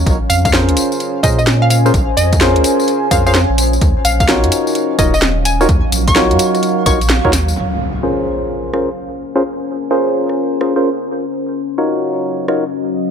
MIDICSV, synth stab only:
0, 0, Header, 1, 2, 480
1, 0, Start_track
1, 0, Key_signature, -5, "minor"
1, 0, Tempo, 468750
1, 66, Time_signature, 4, 2, 24, 8
1, 13423, End_track
2, 0, Start_track
2, 0, Title_t, "Synth stab"
2, 0, Program_c, 0, 62
2, 545, Note_on_c, 0, 65, 71
2, 545, Note_on_c, 0, 68, 66
2, 545, Note_on_c, 0, 70, 69
2, 546, Note_on_c, 0, 61, 77
2, 546, Note_on_c, 0, 72, 83
2, 1245, Note_off_c, 0, 65, 0
2, 1245, Note_off_c, 0, 68, 0
2, 1245, Note_off_c, 0, 70, 0
2, 1246, Note_off_c, 0, 61, 0
2, 1246, Note_off_c, 0, 72, 0
2, 1265, Note_on_c, 0, 61, 79
2, 1266, Note_on_c, 0, 65, 71
2, 1266, Note_on_c, 0, 68, 74
2, 1266, Note_on_c, 0, 70, 76
2, 1266, Note_on_c, 0, 72, 85
2, 1425, Note_off_c, 0, 61, 0
2, 1426, Note_off_c, 0, 65, 0
2, 1426, Note_off_c, 0, 68, 0
2, 1426, Note_off_c, 0, 70, 0
2, 1426, Note_off_c, 0, 72, 0
2, 1901, Note_on_c, 0, 61, 101
2, 1901, Note_on_c, 0, 65, 96
2, 1901, Note_on_c, 0, 68, 89
2, 1901, Note_on_c, 0, 70, 89
2, 1901, Note_on_c, 0, 72, 112
2, 1971, Note_off_c, 0, 65, 0
2, 1971, Note_off_c, 0, 68, 0
2, 1971, Note_off_c, 0, 70, 0
2, 1971, Note_off_c, 0, 72, 0
2, 1972, Note_off_c, 0, 61, 0
2, 2465, Note_on_c, 0, 61, 95
2, 2465, Note_on_c, 0, 70, 86
2, 2466, Note_on_c, 0, 65, 85
2, 2466, Note_on_c, 0, 68, 87
2, 2466, Note_on_c, 0, 72, 104
2, 3165, Note_off_c, 0, 61, 0
2, 3165, Note_off_c, 0, 70, 0
2, 3166, Note_off_c, 0, 65, 0
2, 3166, Note_off_c, 0, 68, 0
2, 3166, Note_off_c, 0, 72, 0
2, 3186, Note_on_c, 0, 61, 78
2, 3186, Note_on_c, 0, 72, 87
2, 3187, Note_on_c, 0, 65, 73
2, 3187, Note_on_c, 0, 68, 69
2, 3187, Note_on_c, 0, 70, 73
2, 3319, Note_off_c, 0, 61, 0
2, 3319, Note_off_c, 0, 65, 0
2, 3319, Note_off_c, 0, 68, 0
2, 3319, Note_off_c, 0, 70, 0
2, 3319, Note_off_c, 0, 72, 0
2, 3342, Note_on_c, 0, 65, 84
2, 3342, Note_on_c, 0, 68, 86
2, 3342, Note_on_c, 0, 70, 81
2, 3342, Note_on_c, 0, 72, 104
2, 3343, Note_on_c, 0, 61, 91
2, 3478, Note_off_c, 0, 61, 0
2, 3478, Note_off_c, 0, 65, 0
2, 3478, Note_off_c, 0, 68, 0
2, 3478, Note_off_c, 0, 70, 0
2, 3478, Note_off_c, 0, 72, 0
2, 4386, Note_on_c, 0, 63, 79
2, 4386, Note_on_c, 0, 66, 69
2, 4387, Note_on_c, 0, 65, 70
2, 4387, Note_on_c, 0, 70, 72
2, 4387, Note_on_c, 0, 73, 84
2, 5086, Note_off_c, 0, 63, 0
2, 5086, Note_off_c, 0, 65, 0
2, 5086, Note_off_c, 0, 66, 0
2, 5086, Note_off_c, 0, 70, 0
2, 5086, Note_off_c, 0, 73, 0
2, 5105, Note_on_c, 0, 63, 80
2, 5105, Note_on_c, 0, 66, 71
2, 5105, Note_on_c, 0, 70, 72
2, 5106, Note_on_c, 0, 65, 70
2, 5106, Note_on_c, 0, 73, 89
2, 5266, Note_off_c, 0, 63, 0
2, 5266, Note_off_c, 0, 65, 0
2, 5266, Note_off_c, 0, 66, 0
2, 5266, Note_off_c, 0, 70, 0
2, 5266, Note_off_c, 0, 73, 0
2, 5742, Note_on_c, 0, 63, 99
2, 5742, Note_on_c, 0, 65, 93
2, 5742, Note_on_c, 0, 66, 92
2, 5742, Note_on_c, 0, 70, 92
2, 5742, Note_on_c, 0, 73, 112
2, 5812, Note_off_c, 0, 63, 0
2, 5812, Note_off_c, 0, 65, 0
2, 5812, Note_off_c, 0, 66, 0
2, 5812, Note_off_c, 0, 70, 0
2, 5812, Note_off_c, 0, 73, 0
2, 6304, Note_on_c, 0, 63, 97
2, 6304, Note_on_c, 0, 66, 90
2, 6304, Note_on_c, 0, 70, 86
2, 6304, Note_on_c, 0, 73, 107
2, 6305, Note_on_c, 0, 65, 85
2, 7005, Note_off_c, 0, 63, 0
2, 7005, Note_off_c, 0, 65, 0
2, 7005, Note_off_c, 0, 66, 0
2, 7005, Note_off_c, 0, 70, 0
2, 7005, Note_off_c, 0, 73, 0
2, 7024, Note_on_c, 0, 65, 82
2, 7024, Note_on_c, 0, 73, 98
2, 7025, Note_on_c, 0, 63, 82
2, 7025, Note_on_c, 0, 66, 80
2, 7025, Note_on_c, 0, 70, 77
2, 7155, Note_off_c, 0, 65, 0
2, 7155, Note_off_c, 0, 66, 0
2, 7155, Note_off_c, 0, 70, 0
2, 7155, Note_off_c, 0, 73, 0
2, 7156, Note_off_c, 0, 63, 0
2, 7420, Note_on_c, 0, 66, 91
2, 7421, Note_on_c, 0, 63, 101
2, 7421, Note_on_c, 0, 65, 92
2, 7421, Note_on_c, 0, 70, 91
2, 7421, Note_on_c, 0, 73, 108
2, 7491, Note_off_c, 0, 63, 0
2, 7491, Note_off_c, 0, 65, 0
2, 7491, Note_off_c, 0, 66, 0
2, 7491, Note_off_c, 0, 70, 0
2, 7491, Note_off_c, 0, 73, 0
2, 8225, Note_on_c, 0, 61, 72
2, 8225, Note_on_c, 0, 65, 65
2, 8225, Note_on_c, 0, 68, 66
2, 8225, Note_on_c, 0, 70, 64
2, 8225, Note_on_c, 0, 72, 82
2, 8925, Note_off_c, 0, 61, 0
2, 8925, Note_off_c, 0, 65, 0
2, 8925, Note_off_c, 0, 68, 0
2, 8925, Note_off_c, 0, 70, 0
2, 8925, Note_off_c, 0, 72, 0
2, 8944, Note_on_c, 0, 65, 67
2, 8944, Note_on_c, 0, 70, 67
2, 8945, Note_on_c, 0, 61, 72
2, 8945, Note_on_c, 0, 68, 65
2, 8945, Note_on_c, 0, 72, 82
2, 9105, Note_off_c, 0, 61, 0
2, 9105, Note_off_c, 0, 65, 0
2, 9105, Note_off_c, 0, 68, 0
2, 9105, Note_off_c, 0, 70, 0
2, 9105, Note_off_c, 0, 72, 0
2, 9580, Note_on_c, 0, 65, 86
2, 9580, Note_on_c, 0, 72, 104
2, 9581, Note_on_c, 0, 61, 98
2, 9581, Note_on_c, 0, 68, 85
2, 9581, Note_on_c, 0, 70, 86
2, 9651, Note_off_c, 0, 61, 0
2, 9651, Note_off_c, 0, 65, 0
2, 9651, Note_off_c, 0, 68, 0
2, 9651, Note_off_c, 0, 70, 0
2, 9651, Note_off_c, 0, 72, 0
2, 10145, Note_on_c, 0, 61, 85
2, 10146, Note_on_c, 0, 65, 86
2, 10146, Note_on_c, 0, 68, 84
2, 10146, Note_on_c, 0, 70, 81
2, 10146, Note_on_c, 0, 72, 99
2, 10845, Note_off_c, 0, 61, 0
2, 10846, Note_off_c, 0, 65, 0
2, 10846, Note_off_c, 0, 68, 0
2, 10846, Note_off_c, 0, 70, 0
2, 10846, Note_off_c, 0, 72, 0
2, 10865, Note_on_c, 0, 61, 74
2, 10865, Note_on_c, 0, 65, 70
2, 10865, Note_on_c, 0, 68, 67
2, 10865, Note_on_c, 0, 70, 67
2, 10865, Note_on_c, 0, 72, 84
2, 10998, Note_off_c, 0, 61, 0
2, 10998, Note_off_c, 0, 65, 0
2, 10998, Note_off_c, 0, 68, 0
2, 10998, Note_off_c, 0, 70, 0
2, 10998, Note_off_c, 0, 72, 0
2, 11020, Note_on_c, 0, 61, 85
2, 11020, Note_on_c, 0, 65, 81
2, 11020, Note_on_c, 0, 68, 80
2, 11020, Note_on_c, 0, 70, 79
2, 11020, Note_on_c, 0, 72, 102
2, 11157, Note_off_c, 0, 61, 0
2, 11157, Note_off_c, 0, 65, 0
2, 11157, Note_off_c, 0, 68, 0
2, 11157, Note_off_c, 0, 70, 0
2, 11157, Note_off_c, 0, 72, 0
2, 12063, Note_on_c, 0, 63, 77
2, 12063, Note_on_c, 0, 65, 69
2, 12063, Note_on_c, 0, 66, 68
2, 12063, Note_on_c, 0, 70, 66
2, 12063, Note_on_c, 0, 73, 79
2, 12764, Note_off_c, 0, 63, 0
2, 12764, Note_off_c, 0, 65, 0
2, 12764, Note_off_c, 0, 66, 0
2, 12764, Note_off_c, 0, 70, 0
2, 12764, Note_off_c, 0, 73, 0
2, 12782, Note_on_c, 0, 63, 79
2, 12782, Note_on_c, 0, 65, 68
2, 12782, Note_on_c, 0, 66, 68
2, 12782, Note_on_c, 0, 70, 70
2, 12782, Note_on_c, 0, 73, 80
2, 12944, Note_off_c, 0, 63, 0
2, 12944, Note_off_c, 0, 65, 0
2, 12944, Note_off_c, 0, 66, 0
2, 12944, Note_off_c, 0, 70, 0
2, 12944, Note_off_c, 0, 73, 0
2, 13423, End_track
0, 0, End_of_file